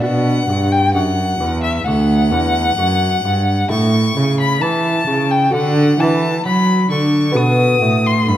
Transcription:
0.00 cello B2, lute B2 D4 F#4, violin F#5
0.48 cello G2, lute G2
0.72 violin G5
0.94 cello F#2, lute F#2, violin F#5
1.40 cello E2, lute E2
1.63 violin E5
1.85 cello D2, lute D2, violin F#5
2.31 cello E2, lute E2
2.77 cello F#2, lute F#2
3.24 cello G2, lute G2
3.68 cello A2, lute A2 E4 A4, violin C#6
4.16 cello C#3, lute C#3
4.40 violin B5
4.61 cello E3, lute E3, violin A5
5.07 lute C#3, cello C#3
5.31 violin G5
5.50 cello D3, lute D3 F#4 A4, violin F#5
5.99 cello E3, lute E3, violin A5
6.45 cello F#3, lute F#3, violin B5
6.91 cello D3, lute D3, violin C#6
7.32 lute B3 F#4 A4
7.36 lute B2, cello B2, violin D#6
7.82 lute A2, cello A2
8.06 violin C6
8.27 lute G2, cello G2, violin B5

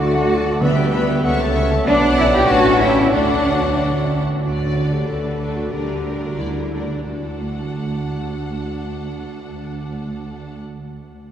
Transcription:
Already playing: double bass section D2, timpani D3, cor anglais D5, flute section F#5
0.00 viola section F#3, bassoon A3, french horn section D4, cello section F#4, clarinet A4, violin section D5 A5
0.13 viola section A3, violin section A4 F#5
0.29 viola section F#3, violin section D5 A5
0.45 viola section A3, violin section A4 F#5
0.60 timpani D3, french horn section G3, bassoon G3, cello section B3, viola section D4, flute section B4, clarinet B4, cor anglais E5, violin section E5 B5
0.77 viola section B3, violin section D5 G5
0.92 viola section D4, violin section E5 B5
1.07 viola section B3, violin section D5 G5
1.23 double bass section C#2, bassoon A3, viola section C#4, cor anglais E5, violin section E5 C#6, clarinet F#5
1.39 viola section A3, violin section C#5 A5
1.54 viola section C#4, violin section E5 C#6, clarinet E5
1.70 viola section A3, violin section C#5 A5
1.85 double bass section B1, bassoon F#3, french horn section B3, viola section B3, cello section D4, violin section D5 F#5, flute section D5, clarinet D5, cor anglais D5
2.17 french horn section C#4, cello section E4, flute section E5
2.33 french horn section E4, cello section G4, flute section G5
2.49 double bass section A1, bassoon E3, viola section C#4, french horn section D4, cello section F#4, violin section A4 A5, clarinet C#5, cor anglais C#5, flute section F#5
2.80 french horn section C#4, cello section E4, flute section E5, violin section G5
3.12 double bass section D2, bassoon F#3, french horn section A3, cello section D4, viola section D4, violin section A4 F#5, clarinet D5, flute section D5, cor anglais D5
4.44 double bass section D2, cello section D3, clarinet F#4, violin section D5
4.76 viola section A3 D4, violin section A4 D5
4.93 clarinet G4
5.08 double bass section D2, cello section D3, clarinet A4, violin section B4
5.40 viola section A3 D4, violin section A4 D5
5.56 clarinet F#4
5.72 double bass section D2, cello section D3, viola section G3 D4, clarinet G4, violin section A#4 D5
6.06 viola section G3 D4, violin section A#4 D5
6.23 clarinet F#4
6.39 double bass section D2, cello section D3, clarinet E4, violin section D5
6.74 viola section G3 D4, violin section A#4 D5
6.91 clarinet D4
7.08 cello section D2, double bass section D2, viola section D4, clarinet F#4, violin section A4 F#5

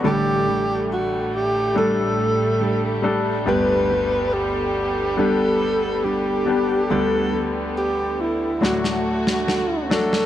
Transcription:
Already playing: string section D3
0.03 grand piano A1 A2 G3 A3 D4 A4, steel-string acoustic guitar A2 D3 G3 D4 G4 A4, string section A2 G3 A3
0.07 alto saxophone G4
0.47 steel-string acoustic guitar G3 D4 A4
0.93 alto saxophone F#4
1.36 alto saxophone G4
1.75 grand piano G3 A3 D4 A4, steel-string acoustic guitar G3 D4 G4 A4, alto saxophone A4
2.60 steel-string acoustic guitar G3 D4 G4 A4
3.02 grand piano G3 A3 D4 A4
3.46 grand piano G1 D2 G3 B3 D4 G4, string section D3 B3, steel-string acoustic guitar G3 D4 G4 B4, alto saxophone B4
3.89 steel-string acoustic guitar D4 G4 B4
4.34 alto saxophone G4
5.17 grand piano G3 B3 D4 G4, steel-string acoustic guitar G3 D4 G4 B4, alto saxophone A4
6.04 steel-string acoustic guitar G3 D4 G4 B4, alto saxophone G4
6.46 grand piano G3 B3 D4 G4
6.90 grand piano D2 D3 G3 B3 D4 G4, steel-string acoustic guitar D3 G3 D4 G4 B4, string section B3, alto saxophone A4
7.32 steel-string acoustic guitar D4 G4 B4
7.78 alto saxophone G4
8.21 alto saxophone E4
8.61 grand piano D2 A2 F#3 A3 D4 F#4, string section D3 A3 F#4, steel-string acoustic guitar A3 D4 F#4 A4, snare
8.65 alto saxophone F#4
8.84 snare
9.27 snare
9.46 steel-string acoustic guitar A3 D4 F#4 A4, snare
9.90 grand piano F#3 A3 D4 F#4, alto saxophone A4, snare
10.13 snare

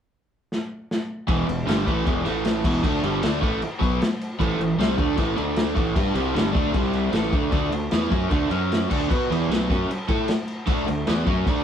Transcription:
0.52 snare
0.91 snare
1.27 fingered electric bass E1, overdriven electric guitar E2 B2 E3, kick, crash
1.47 fingered electric bass E1, overdriven electric guitar E2 B2, crash
1.66 fingered electric bass G1, overdriven electric guitar G2 D3 G3, snare, crash
1.86 fingered electric bass A1, overdriven electric guitar A2 E3 A3, kick, crash
2.05 fingered electric bass E1, overdriven electric guitar E2 B2 E3, kick, crash
2.24 fingered electric bass A1, overdriven electric guitar A2 E3 A3, crash
2.45 snare, crash
2.64 fingered electric bass E1, overdriven electric guitar E2 B2 E3, kick, crash
2.83 fingered electric bass D2, overdriven electric guitar D3 A3 D4, kick, crash
3.02 fingered electric bass G1, overdriven electric guitar G2 D3 G3, crash
3.21 fingered electric bass D2, overdriven electric guitar D3 A3 D4, snare, crash
3.40 fingered electric bass A1, overdriven electric guitar A2 E3 A3, kick, crash
3.62 muted overdriven electric guitar stroke, muted fingered electric bass stroke, crash
3.79 fingered electric bass B1, overdriven electric guitar B2 F#3 B3, kick, crash
4.00 muted overdriven electric guitar stroke, muted fingered electric bass stroke, snare, crash
4.21 crash
4.39 fingered electric bass A1, overdriven electric guitar A2 E3 A3, kick, crash
4.58 fingered electric bass A1, overdriven electric guitar A2 E3, crash
4.78 fingered electric bass C2, overdriven electric guitar C3 G3 C4, snare, crash
4.97 fingered electric bass D2, overdriven electric guitar D3 A3 D4, kick, crash
5.16 fingered electric bass A1, overdriven electric guitar A2 E3 A3, kick, crash
5.36 fingered electric bass D2, overdriven electric guitar D3 A3 D4, crash
5.56 snare, crash
5.75 fingered electric bass A1, overdriven electric guitar A2 E3 A3, kick, crash
5.96 fingered electric bass G2, overdriven electric guitar G3 D4 G4, kick, crash
6.14 fingered electric bass C2, overdriven electric guitar C3 G3 C4, crash
6.33 fingered electric bass G1, overdriven electric guitar G2 D3 G3, snare, crash
6.52 fingered electric bass D2, overdriven electric guitar D3 A3 D4, kick
6.57 crash
6.73 fingered electric bass C2, overdriven electric guitar C3 G3 C4, kick, crash
6.93 crash
7.12 fingered electric bass A1, overdriven electric guitar A2 E3 A3, snare, crash
7.32 fingered electric bass D2, overdriven electric guitar D3 A3 D4, kick, crash
7.50 fingered electric bass D2, overdriven electric guitar D3 A3 D4, kick, crash
7.72 fingered electric bass D2, overdriven electric guitar D3 A3, crash
7.91 fingered electric bass E2, overdriven electric guitar E3 B3 E4, snare, crash
8.11 fingered electric bass F#2, overdriven electric guitar F#3 C#4 F#4, kick, crash
8.29 fingered electric bass D2, overdriven electric guitar D3 A3 D4, kick, crash
8.50 fingered electric bass F#2, overdriven electric guitar F#3 C#4 F#4, crash
8.72 snare, crash
8.90 fingered electric bass D2, overdriven electric guitar D3 A3 D4, kick, crash
9.09 fingered electric bass B2, overdriven electric guitar B3 F#4 B4, kick, crash
9.30 fingered electric bass E2, overdriven electric guitar E3 B3 E4, crash
9.48 fingered electric bass B1, overdriven electric guitar B2 F#3, crash
9.52 overdriven electric guitar B3, snare
9.69 fingered electric bass F#2, overdriven electric guitar F#3 C#4 F#4, kick, crash
9.89 muted fingered electric bass stroke, muted overdriven electric guitar stroke, crash
10.09 fingered electric bass A2, overdriven electric guitar A3 E4 A4, kick, crash
10.28 muted fingered electric bass stroke, muted overdriven electric guitar stroke, snare, crash
10.48 crash
10.67 fingered electric bass D2, overdriven electric guitar D3 A3 D4, kick, crash
10.87 fingered electric bass D2, overdriven electric guitar D3 A3, crash
11.07 fingered electric bass E2, overdriven electric guitar E3 B3 E4, snare, crash
11.26 fingered electric bass F#2, overdriven electric guitar F#3 C#4 F#4, kick, crash
11.47 fingered electric bass D2, overdriven electric guitar D3 A3 D4, kick, crash

